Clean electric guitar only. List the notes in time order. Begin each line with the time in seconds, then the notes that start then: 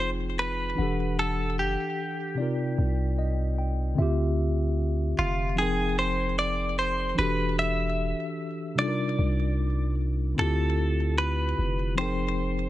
0.39 B4
1.19 A4
1.59 G4
5.19 F4
5.58 G#4
5.99 C5
6.39 D5
6.79 C5
7.19 B4
7.59 E5
8.79 D5
10.39 A4
11.18 B4
11.98 C5